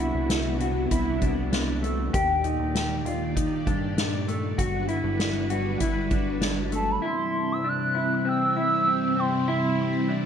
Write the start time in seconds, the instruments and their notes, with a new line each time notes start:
Already playing: analog synth bass C2, string machine C3 B3 D4 E4 F#4
0.00 clean electric guitar E4
0.15 analog synth bass C2
0.30 snare, closed hi-hat
0.60 clean electric guitar F#4, closed hi-hat
0.91 analog synth bass C2, clean electric guitar E4, kick, closed hi-hat
1.22 clean electric guitar D4, kick, closed hi-hat
1.52 clean electric guitar D4, snare, closed hi-hat
1.83 clean electric guitar A3, closed hi-hat
2.13 analog synth bass D#2, string machine A#2 D#3 G4 D5, clean electric guitar G4, kick, closed hi-hat
2.44 clean electric guitar D#4, closed hi-hat
2.60 analog synth bass D#2
2.75 snare, closed hi-hat
3.05 analog synth bass D#2, clean electric guitar F4, closed hi-hat
3.36 clean electric guitar D#4, kick, closed hi-hat
3.67 analog synth bass G2, clean electric guitar D4, kick, closed hi-hat
3.98 clean electric guitar D4, snare, closed hi-hat
4.28 clean electric guitar A3, closed hi-hat
4.58 analog synth bass G1, string machine G3 D4 F#4 B4, clean electric guitar F#4, kick, closed hi-hat
4.88 clean electric guitar E4, closed hi-hat
5.04 analog synth bass G1
5.20 snare, closed hi-hat
5.50 clean electric guitar F#4, closed hi-hat
5.80 analog synth bass G1, clean electric guitar E4, kick, closed hi-hat
6.11 clean electric guitar D4, kick, closed hi-hat
6.41 clean electric guitar D4, snare, closed hi-hat
6.72 clean electric guitar A3, soft synth lead A5, closed hi-hat
6.91 soft synth lead B5
7.02 string machine C3 G3 C4 E4, clean electric guitar E4
7.06 soft synth lead C6
7.52 soft synth lead E6
7.64 clean electric guitar D4
7.68 soft synth lead F#6
7.95 clean electric guitar E4
8.25 clean electric guitar C4, soft synth lead E6
8.56 clean electric guitar E4
8.87 clean electric guitar C4
9.17 clean electric guitar C4, soft synth lead C6
9.48 clean electric guitar E4
10.08 clean electric guitar D4